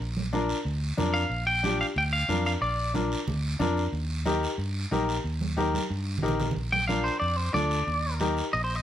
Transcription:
0.00 fingered electric bass A#1, long guiro
0.17 high conga
0.33 upright piano D4 F4 A#4, high conga, short guiro
0.49 short guiro
0.65 fingered electric bass D2, long guiro
0.97 fingered electric bass F2, upright piano D4 F4 A#4, high conga, low conga, short guiro
1.14 clean electric guitar F5, short guiro
1.30 fingered electric bass A#1, long guiro
1.47 clean electric guitar G5
1.63 upright piano D4 F4 G4, high conga, short guiro
1.80 clean electric guitar F5, short guiro
1.96 fingered electric bass D2, clean electric guitar G5, long guiro
2.13 clean electric guitar F5
2.28 fingered electric bass F2, upright piano D4 F4 A#4, high conga, short guiro
2.45 clean electric guitar F5, short guiro
2.61 fingered electric bass A#1, clean electric guitar D5, long guiro
2.94 upright piano D4 F4 A#4, high conga, short guiro
3.12 short guiro
3.28 fingered electric bass D2, low conga, long guiro
3.59 fingered electric bass F2, upright piano D4 F4 A#4, high conga, low conga, short guiro
3.77 short guiro
3.92 fingered electric bass D#2, long guiro
4.25 upright piano D#4 G4 A#4, high conga, short guiro
4.43 short guiro
4.58 fingered electric bass G2, long guiro
4.91 fingered electric bass A#1, upright piano D#4 G4 A#4, high conga, short guiro
5.09 short guiro
5.24 fingered electric bass D#2, long guiro
5.41 high conga
5.57 upright piano D#4 G4 A#4, high conga, short guiro
5.74 high conga, short guiro
5.90 fingered electric bass G2, long guiro
6.18 low conga
6.22 fingered electric bass A#1, upright piano D#4 G4 A#4, short guiro
6.28 low conga
6.40 low conga, short guiro
6.51 low conga
6.55 fingered electric bass A#1, long guiro
6.72 clean electric guitar G5, high conga
6.88 upright piano D4 F4 A#4, clean electric guitar F5, high conga, short guiro
7.04 clean electric guitar C5, short guiro
7.20 fingered electric bass F2, clean electric guitar D5, long guiro
7.36 clean electric guitar C5
7.53 fingered electric bass D2, upright piano D4 F4 A4, clean electric guitar D5, high conga, short guiro
7.71 short guiro
7.87 fingered electric bass D#2, long guiro
8.20 upright piano D#4 G4 A#4, high conga, short guiro
8.37 short guiro
8.53 fingered electric bass A#1, clean electric guitar D#5, long guiro
8.64 clean electric guitar C5
8.75 clean electric guitar D#5

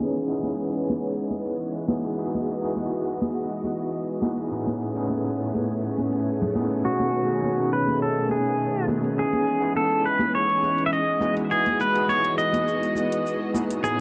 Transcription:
Already playing: string machine E3 G#3 B3 C#4 G#4, tine electric piano B3 C#4 D#4 E4 G#4
0.01 closed hi-hat, high conga, shaker
0.15 shaker
0.29 tine electric piano B3 C#4 D#4 E4 G#4, closed hi-hat
0.43 high conga, shaker
0.59 closed hi-hat
0.73 shaker
0.88 closed hi-hat, high conga
1.03 shaker
1.18 closed hi-hat
1.31 high conga, shaker
1.47 closed hi-hat, shaker
1.60 shaker
1.88 tine electric piano B3 D#4 E4 F#4 G#4, string machine F#4 D#5, high conga, shaker
2.05 closed hi-hat, shaker
2.18 tine electric piano B3 D#4 E4 F#4 G#4, shaker
2.34 closed hi-hat, high conga, shaker
2.48 shaker
2.61 tine electric piano B3 D#4 E4 F#4 G#4, closed hi-hat, shaker
2.77 high conga, shaker
2.93 closed hi-hat
3.06 shaker
3.21 closed hi-hat, high conga, shaker
3.35 shaker
3.50 closed hi-hat, shaker
3.64 high conga, shaker
3.79 closed hi-hat, shaker
3.93 shaker
4.21 tine electric piano B3 D#4 E4 F#4 G#4, high conga, shaker
4.38 closed hi-hat, shaker
4.51 tine electric piano A2 B3 C#4 D#4 E4 G#4, string machine A3 B3 C#4 G#4, shaker
4.67 closed hi-hat, high conga, shaker
4.81 shaker
4.94 tine electric piano A2 B3 C#4 D#4 E4 G#4, closed hi-hat, shaker
5.10 high conga, shaker
5.26 closed hi-hat
5.40 shaker
5.55 closed hi-hat, high conga, shaker
5.69 shaker
5.84 closed hi-hat, shaker
5.98 high conga, shaker
6.13 closed hi-hat, shaker
6.27 shaker
6.42 low conga
6.54 tine electric piano A2 B3 C#4 D#4 E4 G#4, high conga, shaker
6.71 closed hi-hat, shaker
6.83 tine electric piano B2 A3 C#4 D#4 F#4 G#4, string machine D#3, pedal steel guitar F#4, shaker
7.00 closed hi-hat, high conga, shaker
7.14 shaker
7.27 tine electric piano B2 A3 C#4 D#4 F#4 G#4, closed hi-hat, shaker
7.43 high conga, shaker
7.58 closed hi-hat
7.72 pedal steel guitar B4, shaker
7.88 closed hi-hat, high conga, shaker
8.01 pedal steel guitar A4, shaker
8.17 closed hi-hat, shaker
8.29 pedal steel guitar G#4, high conga, shaker
8.46 closed hi-hat, shaker
8.59 shaker
8.87 tine electric piano B2 A3 C#4 D#4 F#4 G#4, high conga, shaker
9.04 closed hi-hat, shaker
9.16 string machine E3 G#3, tine electric piano B3 C#4 D#4 E4 G#4, pedal steel guitar G#4, shaker
9.33 closed hi-hat, high conga, shaker
9.47 shaker
9.60 tine electric piano B3 C#4 D#4 E4 G#4, closed hi-hat, shaker
9.76 pedal steel guitar A4, high conga, shaker
9.92 closed hi-hat
10.06 pedal steel guitar B4, shaker
10.19 closed hi-hat, high conga, shaker
10.35 pedal steel guitar C#5, shaker
10.49 closed hi-hat, shaker
10.63 high conga, shaker
10.78 closed hi-hat, shaker
10.86 pedal steel guitar E5
10.93 pedal steel guitar D#5, shaker
11.20 string machine E3 B3 F#4 D#5, tine electric piano B3 D#4 E4 F#4 G#4, high conga, shaker
11.37 closed hi-hat, shaker
11.49 tine electric piano B3 D#4 E4 F#4 G#4, pedal steel guitar G#4, shaker
11.66 closed hi-hat, high conga, shaker
11.80 pedal steel guitar B4, shaker
11.93 tine electric piano B3 D#4 E4 F#4 G#4, closed hi-hat, shaker
12.08 pedal steel guitar C#5, high conga, shaker
12.24 closed hi-hat
12.38 pedal steel guitar D#5, shaker
12.53 closed hi-hat, high conga, shaker
12.68 shaker
12.83 closed hi-hat, shaker
12.95 high conga, shaker
13.12 closed hi-hat, shaker
13.27 shaker
13.53 tine electric piano B3 D#4 E4 F#4 G#4, high conga, shaker
13.70 closed hi-hat, shaker
13.83 tine electric piano A2 B3 C#4 D#4 E4 G#4, string machine A3 C#4 G#4, pedal steel guitar G#4, shaker

